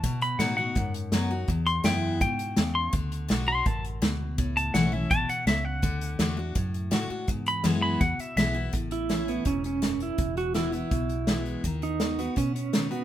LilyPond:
<<
  \new Staff \with { instrumentName = "Clean electric guitar" } { \time 4/4 \key a \major \tempo 4 = 166 a''8 b''8 fis''8 fis''4 r4. | r8 c'''8 g''4 g''4. c'''8 | r4. c'''8 a''8 r4. | r8 a''8 fis''8 e''8 a''8 fis''8 e''8 fis''8~ |
fis''2~ fis''8 r4. | r8 b''8 r8 b''8 fis''8 e''8 e''4 | r1 | r1 |
r1 | }
  \new Staff \with { instrumentName = "Pedal steel guitar" } { \time 4/4 \key a \major r1 | r1 | r1 | r1 |
r1 | r1 | r8 e'4 b8 cis'8 cis'4 e'8~ | e'8 fis'8 e'8 e'2 r8 |
r8 dis'4 b8 cis'8 cis'4 b8 | }
  \new Staff \with { instrumentName = "Steel-string acoustic guitar" } { \time 4/4 \key a \major << { r4 <fis b dis' fis'>8 <dis' fis'>8 r4 <fis b dis' fis'>8 <dis' fis'>8 | r4 <e gis b e'>4 r2 | r4 <d a d' fis'>8 <d' fis'>8 r2 | r4 <e a cis' e'>8 <cis' e'>8 r2 |
r4 <d a d' fis'>8 <d' fis'>8 r4 <d a d' fis'>8 <d' fis'>8 | r4 <e gis b e'>4 r4 <e gis b e'>8 <b e'>8 | r4 <e a cis' e'>4 r2 | r4 <e gis b e'>8 <b e'>8 r4 <e gis b e'>4 |
r4 <dis b dis' fis'>8 <dis' fis'>8 r4 <dis b dis' fis'>8 <dis' fis'>8 | } \\ { b,2 fis,2 | e,2 b,4 cis4 | d2 fis,4 b,4 | a,2 b,4 cis4 |
d2 a,2 | e,2 b,2 | a,2 gis,4 fis,4 | e,2 b,2 |
dis2 b2 | } >> }
  \new Staff \with { instrumentName = "Fingered electric bass" } { \clef bass \time 4/4 \key a \major b,4 a,4 gis,4 fis,4 | e,4 fis,4 gis,4 e,4 | d,4 b,,4 a,,4 d,4 | cis,4 b,,4 a,,8 r8 cis,4 |
d,4 e,4 fis,4 a,8 r8 | gis,4 fis,4 e,8 r8 b,,4 | a,,2 e,,2 | e,,2 b,,2 |
dis,2 b,2 | }
  \new DrumStaff \with { instrumentName = "Drums" } \drummode { \time 4/4 <hh bd>8 hh8 <hh sn>4 <hh bd>8 hh8 <hh sn>4 | <hh bd>8 hh8 <hh sn>4 <hh bd>8 hh8 <hh sn>4 | <hh bd>8 hh8 <hh sn>4 <hh bd>8 hh8 <hh sn>4 | <hh bd>8 hh8 <hh sn>4 <hh bd>8 hh8 <hh sn>4 |
<hh bd>8 hh8 <hh sn>4 <hh bd>8 hh8 <hh sn>4 | <hh bd>8 hh8 <hh sn>4 <hh bd>8 hh8 <hh sn>4 | <hh bd>8 hh8 <hh sn>8 hh8 <hh bd>8 hh8 <hh sn>8 hh8 | <hh bd>8 hh8 <hh sn>8 hh8 <hh bd>8 hh8 <hh sn>8 hh8 |
<hh bd>8 hh8 <hh sn>8 hh8 <hh bd>8 hh8 <hh sn>8 hh8 | }
>>